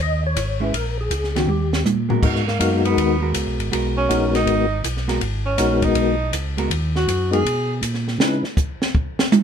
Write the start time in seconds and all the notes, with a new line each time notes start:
0.00 D#2 D#5
0.27 C#5
0.36 G#1, kick, hi-hat pedal, ride
0.60 G#3 C#4 E4 B4
0.73 A#1 A#4, kick, ride
1.01 G#4
1.10 C#2, kick, hi-hat pedal, ride
1.24 snare
1.35 D#3 B3 C#4 F#4 G4, snare, ride
1.47 D#2 G4, high tom
1.73 snare
1.84 A#2, hi-hat pedal, high tom
2.09 G#3 B3 F#4 A#4, floor tom
2.22 G#2 G#3 B3 D#4 F#4 A#4, kick, crash
2.36 snare
2.48 A#3, snare
2.59 F#2 G#3 B3 D#4 F#4 A#4, kick, hi-hat pedal, ride
2.85 B3, ride
2.97 D#2, kick, ride
3.21 G#3 B3 F#4 A#4
3.34 C#2, kick, hi-hat pedal, ride
3.47 B1
3.59 G#1, ride
3.72 B1 G#3 B3 F#4 A#4, kick, ride
3.97 C#4
4.09 A#1 G#3 B3 D#4 F#4 A#4, kick, hi-hat pedal, ride
4.35 D#4, snare, ride
4.46 G#1, kick, ride
4.83 B1, kick, hi-hat pedal, ride
4.97 snare
5.08 G#3 B3 F#4 A#4, snare, ride
5.21 G#1, kick, ride
5.46 C#4
5.58 A#1 G#3 B3 D#4 F#4 A#4, kick, snare, hi-hat pedal, ride
5.82 D#4, kick, ride
5.95 B1, kick, ride
6.32 C#2, kick, hi-hat pedal, ride
6.57 G#3 B3 F#4 A#4, ride
6.70 D#2, kick, ride
6.96 F#4, snare
7.08 F#2, kick, hi-hat pedal, ride
7.31 G#3 B3 D#4 F#4 G#4 A#4, ride
7.45 B2, kick, ride
7.82 A#2, kick, hi-hat pedal, ride
7.94 snare
8.08 snare
8.18 C#3 G#3 C#4 D#4 E4 B4, snare
8.44 snare
8.57 kick, hi-hat pedal
8.82 snare
8.95 kick
9.19 snare
9.32 hi-hat pedal, high tom